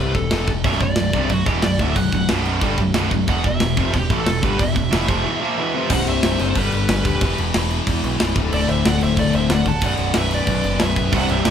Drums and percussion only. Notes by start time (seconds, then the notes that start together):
0.15 kick, crash
0.31 snare, crash
0.47 kick, crash
0.64 kick, crash
0.72 snare
0.80 kick, crash
0.96 snare, crash
1.13 kick, crash
1.29 kick, crash
1.46 kick, crash
1.62 snare, crash
1.79 kick, crash
1.96 kick, crash
2.12 kick, crash
2.29 snare, crash
2.45 crash
2.61 kick, crash
2.78 kick, crash
2.94 snare, crash
3.11 kick, crash
3.28 kick, crash
3.44 kick, crash
3.60 snare, crash
3.77 kick, crash
3.94 kick, crash
4.10 kick, crash
4.26 snare, crash
4.43 kick, crash
4.59 kick, crash
4.76 kick, crash
4.93 snare, crash
5.08 kick, crash
5.90 kick, crash
6.07 crash
6.23 snare, crash
6.39 crash
6.55 kick, crash
6.72 crash
6.89 snare, crash
7.05 kick, crash
7.21 kick, crash
7.38 crash
7.54 snare, crash
7.71 crash
7.87 kick, crash
8.04 crash
8.20 snare, crash
8.36 kick, crash
8.52 crash
8.69 crash
8.85 snare, crash
9.01 crash
9.17 kick, crash
9.33 crash
9.50 snare, crash
9.66 kick, crash
9.81 kick, crash
9.97 crash
10.14 snare, crash
10.31 crash
10.47 kick, crash
10.64 crash
10.79 snare, crash
10.96 kick, crash
11.13 kick, crash
11.29 crash
11.45 snare, crash